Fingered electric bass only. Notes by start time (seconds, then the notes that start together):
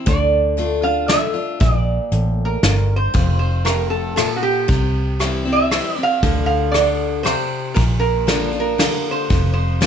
0.07 D2
1.61 A#1
2.12 A1
2.63 G1
3.15 F1
4.69 C2
6.23 D2
7.77 A#1
9.30 F1